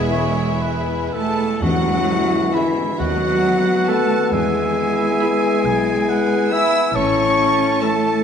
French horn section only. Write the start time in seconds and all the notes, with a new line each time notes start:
Already playing: G#3 E4
1.63 G#3 E4
3.00 B3 F#4
4.34 E4
6.95 A3